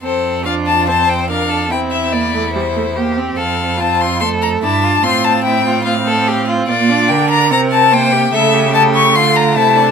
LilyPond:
<<
  \new Staff \with { instrumentName = "Violin" } { \time 4/4 \key f \major \tempo 4 = 145 c''4 f''8 a''8 a''8 g''8 f''4 | g''8 e''8 d''4 c''4. r8 | f''4 a''8 c'''8 c'''8 bes''8 a''4 | c'''8 a''8 g''4 f''4. r8 |
d''4 g''8 bes''8 bes''8 a''8 g''4 | e''4 a''8 cis'''8 c'''8 bes''8 a''4 | }
  \new Staff \with { instrumentName = "Violin" } { \time 4/4 \key f \major a'4 f'4 c''4 bes'8 a'8 | e'2. g'4 | a'4 f'4 a'4 e'8 f'8 | f'4 e'8 f'8 f'8 a'8 g'8 f'8 |
f'4 bes'2 c''8 g'8 | a'8 g'4. f'4 e'8 d'8 | }
  \new Staff \with { instrumentName = "Viola" } { \time 4/4 \key f \major c'4 d'4 c'4 d'4 | c'4 bes8 a8 g8 a8 bes8 c'8~ | c'4 c'4 a4 d'4 | c'2 c'2 |
bes8 d'4. c'4 bes4 | a4 a2. | }
  \new Staff \with { instrumentName = "Cello" } { \clef bass \time 4/4 \key f \major f,1 | e,1 | f,2. g,4 | a,1 |
bes,4 d4 c2 | cis2 d4 c4 | }
>>